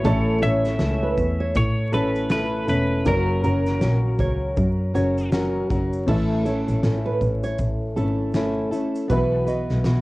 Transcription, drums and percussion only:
0.05 kick loud
0.05 shaker medium
0.43 shaker soft
0.65 snare soft
0.65 shaker medium
0.79 snare loud
0.79 shaker medium
1.18 kick medium
1.18 shaker medium
1.55 kick loud
1.55 shaker medium
1.93 shaker soft
2.15 shaker soft
2.30 snare loud
2.30 shaker medium
2.68 shaker medium
3.05 kick loud
3.05 shaker medium
3.44 shaker medium
3.66 snare soft
3.66 shaker soft
3.81 snare loud
3.81 shaker medium
4.19 kick medium
4.19 shaker soft
4.57 kick loud
4.57 shaker medium
4.95 shaker medium
5.18 shaker soft
5.32 snare loud
5.32 shaker medium
5.70 kick loud
5.70 shaker medium
5.93 shaker medium
6.08 kick loud
6.08 crash medium
6.46 shaker soft
6.68 shaker soft
6.83 snare loud
6.83 shaker medium
7.21 kick medium
7.21 shaker soft
7.44 shaker medium
7.59 kick medium
7.59 shaker medium
7.97 shaker soft
8.34 snare loud
8.34 shaker medium
8.73 shaker medium
8.95 shaker medium
9.10 kick loud
9.10 shaker medium
9.47 shaker medium
9.69 snare soft
9.84 snare loud
9.84 shaker medium

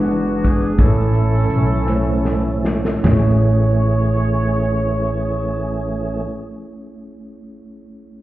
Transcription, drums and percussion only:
0.11 closed hi-hat soft
0.44 kick medium
0.44 closed hi-hat medium
0.79 kick medium
0.79 closed hi-hat medium
1.13 closed hi-hat soft
1.50 closed hi-hat medium
1.87 snare soft
2.25 snare medium
2.65 snare medium
2.85 snare medium
3.04 snare medium
3.04 floor tom medium
3.04 ride bell medium

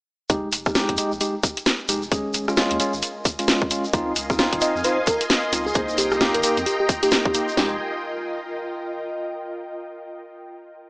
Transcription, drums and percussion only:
0.30 kick loud
0.30 closed hi-hat medium
0.30 shekere medium
0.52 open hi-hat loud
0.52 shekere medium
0.66 kick loud
0.66 cross-stick medium
0.66 shekere soft
0.75 snare loud
0.75 closed hi-hat medium
0.75 shekere medium
0.89 kick medium
0.89 closed hi-hat medium
0.97 open hi-hat loud
0.97 shekere medium
1.12 shekere soft
1.21 closed hi-hat medium
1.21 shekere soft
1.43 kick loud
1.43 cross-stick soft
1.43 open hi-hat loud
1.43 shekere loud
1.57 closed hi-hat medium
1.57 shekere soft
1.66 snare loud
1.66 closed hi-hat medium
1.66 shekere soft
1.89 open hi-hat loud
1.89 shekere medium
2.02 shekere soft
2.12 kick loud
2.12 closed hi-hat medium
2.12 shekere medium
2.34 open hi-hat loud
2.34 shekere medium
2.48 cross-stick medium
2.48 shekere soft
2.57 snare loud
2.57 closed hi-hat medium
2.57 shekere soft
2.71 closed hi-hat medium
2.80 open hi-hat loud
2.80 shekere medium
2.94 shekere soft
3.02 closed hi-hat medium
3.02 shekere medium
3.25 kick loud
3.25 cross-stick soft
3.25 open hi-hat loud
3.25 shekere loud
3.39 closed hi-hat medium
3.39 shekere soft
3.48 snare loud
3.48 closed hi-hat medium
3.48 shekere medium
3.62 kick loud
3.71 open hi-hat loud
3.71 shekere loud
3.84 shekere soft
3.93 kick loud
3.93 closed hi-hat medium
3.93 shekere soft
4.16 open hi-hat loud
4.16 shekere medium
4.30 kick loud
4.30 cross-stick medium
4.30 shekere soft
4.39 snare loud
4.39 closed hi-hat medium
4.39 shekere soft
4.53 kick medium
4.53 closed hi-hat medium
4.61 open hi-hat loud
4.61 shekere medium
4.76 shekere soft
4.84 closed hi-hat medium
4.84 shekere medium
5.07 kick loud
5.07 cross-stick soft
5.07 open hi-hat loud
5.07 shekere medium
5.21 closed hi-hat medium
5.21 shekere soft
5.30 snare loud
5.30 closed hi-hat medium
5.30 shekere medium
5.53 open hi-hat loud
5.53 shekere loud
5.67 shekere soft
5.74 kick loud
5.74 closed hi-hat medium
5.74 shekere medium
5.88 shekere soft
5.98 open hi-hat loud
5.98 shekere loud
6.11 cross-stick medium
6.11 shekere soft
6.21 snare loud
6.21 closed hi-hat medium
6.21 shekere soft
6.34 closed hi-hat medium
6.43 open hi-hat loud
6.43 shekere loud
6.57 closed hi-hat soft
6.57 shekere soft
6.66 closed hi-hat medium
6.66 shekere medium
6.89 kick loud
6.89 cross-stick soft
6.89 open hi-hat loud
6.89 shekere loud
7.03 closed hi-hat medium
7.03 shekere soft
7.11 snare loud
7.11 closed hi-hat medium
7.11 shekere medium
7.25 kick loud
7.34 open hi-hat medium
7.34 shekere medium
7.49 shekere soft
7.57 snare loud

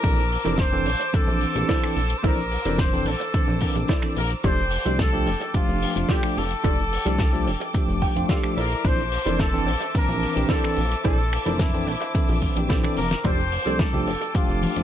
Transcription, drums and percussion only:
0.04 kick loud
0.04 closed hi-hat medium
0.04 shaker medium
0.18 shaker medium
0.32 open hi-hat loud
0.46 closed hi-hat medium
0.46 shaker medium
0.58 kick loud
0.58 snare loud
0.58 closed hi-hat medium
0.58 shaker medium
0.73 shaker soft
0.86 open hi-hat loud
1.01 closed hi-hat medium
1.01 shaker medium
1.14 kick loud
1.14 closed hi-hat medium
1.14 shaker medium
1.28 shaker soft
1.41 open hi-hat loud
1.56 closed hi-hat medium
1.56 shaker medium
1.69 kick loud
1.69 snare loud
1.69 open hi-hat medium
1.69 shaker medium
1.84 finger snap medium
1.84 shaker soft
1.96 open hi-hat loud
2.10 closed hi-hat medium
2.10 shaker medium
2.24 kick loud
2.24 closed hi-hat medium
2.24 shaker medium
2.39 shaker medium
2.51 open hi-hat loud
2.65 closed hi-hat medium
2.65 shaker medium
2.78 kick loud
2.78 snare loud
2.78 closed hi-hat medium
2.78 shaker medium
2.93 shaker medium
3.06 open hi-hat loud
3.21 closed hi-hat medium
3.21 shaker medium
3.34 kick loud
3.34 closed hi-hat medium
3.34 shaker medium
3.49 shaker soft
3.61 kick medium
3.61 open hi-hat loud
3.76 closed hi-hat medium
3.76 shaker medium
3.88 kick loud
3.88 snare loud
3.88 closed hi-hat medium
3.88 shaker medium
4.02 finger snap medium
4.02 shaker soft
4.17 open hi-hat loud
4.30 closed hi-hat medium
4.30 shaker medium
4.44 kick loud
4.44 closed hi-hat medium
4.44 shaker medium
4.59 shaker soft
4.71 open hi-hat loud
4.86 closed hi-hat medium
4.86 shaker medium
4.99 kick loud
4.99 snare loud
4.99 closed hi-hat medium
4.99 shaker medium
5.14 shaker soft
5.27 open hi-hat loud
5.41 closed hi-hat medium
5.41 shaker medium
5.54 kick loud
5.54 closed hi-hat medium
5.54 shaker medium
5.69 shaker medium
5.82 open hi-hat loud
5.96 closed hi-hat medium
5.96 shaker medium
6.09 kick loud
6.09 snare loud
6.09 open hi-hat medium
6.09 shaker medium
6.23 finger snap medium
6.23 shaker medium
6.37 open hi-hat loud
6.51 closed hi-hat medium
6.51 shaker medium
6.64 kick loud
6.64 closed hi-hat medium
6.64 shaker medium
6.79 shaker medium
6.93 open hi-hat loud
7.06 closed hi-hat medium
7.06 shaker medium
7.19 kick loud
7.19 snare loud
7.19 closed hi-hat medium
7.19 shaker medium
7.34 shaker medium
7.47 open hi-hat loud
7.61 closed hi-hat medium
7.61 shaker medium
7.74 kick loud
7.74 closed hi-hat medium
7.74 shaker medium
7.89 shaker soft
8.02 kick medium
8.02 open hi-hat loud
8.16 closed hi-hat medium
8.16 shaker medium
8.29 kick loud
8.29 snare loud
8.29 closed hi-hat medium
8.29 shaker medium
8.44 finger snap medium
8.44 shaker medium
8.58 open hi-hat loud
8.71 closed hi-hat medium
8.71 shaker medium
8.85 kick loud
8.85 closed hi-hat medium
8.85 shaker medium
8.99 shaker medium
9.12 open hi-hat loud
9.27 closed hi-hat medium
9.27 shaker medium
9.39 kick loud
9.39 snare loud
9.39 closed hi-hat medium
9.39 shaker medium
9.55 shaker soft
9.68 open hi-hat loud
9.82 closed hi-hat medium
9.82 shaker medium
9.95 kick loud
9.95 closed hi-hat medium
9.95 shaker medium
10.09 shaker medium
10.23 open hi-hat loud
10.37 closed hi-hat medium
10.37 shaker medium
10.49 kick loud
10.49 snare loud
10.49 open hi-hat medium
10.49 shaker medium
10.64 finger snap medium
10.64 shaker soft
10.77 open hi-hat loud
10.91 closed hi-hat medium
10.91 shaker medium
11.04 kick loud
11.04 closed hi-hat medium
11.04 shaker medium
11.19 shaker medium
11.33 finger snap medium
11.33 open hi-hat loud
11.46 closed hi-hat medium
11.46 shaker medium
11.59 kick loud
11.59 snare loud
11.59 closed hi-hat medium
11.59 shaker medium
11.74 shaker soft
11.88 open hi-hat loud
12.01 closed hi-hat medium
12.01 shaker medium
12.15 kick loud
12.15 closed hi-hat medium
12.15 shaker medium
12.28 open hi-hat medium
12.28 shaker soft
12.42 kick medium
12.42 open hi-hat medium
12.57 closed hi-hat medium
12.57 shaker medium
12.70 kick loud
12.70 snare loud
12.70 closed hi-hat medium
12.70 high tom medium
12.70 shaker medium
12.84 finger snap medium
12.84 high tom medium
12.84 shaker medium
12.97 open hi-hat loud
13.11 snare medium
13.11 closed hi-hat medium
13.11 shaker medium
13.25 kick loud
13.25 closed hi-hat medium
13.25 low conga medium
13.25 cabasa soft
13.25 shaker medium
13.39 shaker soft
13.52 open hi-hat loud
13.52 cabasa medium
13.67 closed hi-hat medium
13.67 shaker medium
13.79 kick loud
13.79 snare loud
13.79 closed hi-hat medium
13.79 cabasa medium
13.79 shaker medium
13.93 high bongo medium
13.93 low conga medium
13.93 cabasa soft
13.93 shaker medium
14.07 open hi-hat loud
14.07 cabasa medium
14.21 closed hi-hat medium
14.21 cabasa soft
14.21 shaker medium
14.35 kick loud
14.35 closed hi-hat medium
14.35 cabasa medium
14.35 shaker medium
14.49 cabasa soft
14.49 shaker soft
14.62 open hi-hat loud
14.62 high bongo soft
14.62 high conga medium
14.62 cabasa loud
14.76 closed hi-hat medium
14.76 cabasa soft
14.76 shaker medium

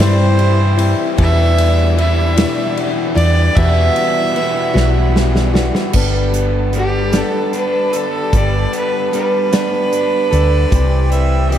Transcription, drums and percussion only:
0.00 snare loud
0.00 ride loud
0.39 ride medium
0.79 ride medium
1.18 kick loud
1.18 ride loud
1.58 ride medium
1.98 ride medium
2.37 snare loud
2.37 ride loud
2.77 ride medium
3.17 ride medium
3.57 kick loud
3.57 ride loud
3.96 ride medium
4.36 ride medium
4.76 snare medium
5.16 snare medium
5.36 snare medium
5.55 snare loud
5.75 snare medium
5.93 kick loud
5.93 crash loud
6.34 closed hi-hat medium
6.73 closed hi-hat medium
7.13 snare loud
7.13 closed hi-hat medium
7.53 closed hi-hat medium
7.93 closed hi-hat medium
8.33 kick loud
8.33 closed hi-hat medium
8.73 closed hi-hat medium
9.13 closed hi-hat medium
9.53 snare loud
9.53 closed hi-hat medium
9.93 closed hi-hat medium
10.33 closed hi-hat medium
10.72 kick loud
10.72 closed hi-hat medium
11.12 closed hi-hat medium
11.52 closed hi-hat medium

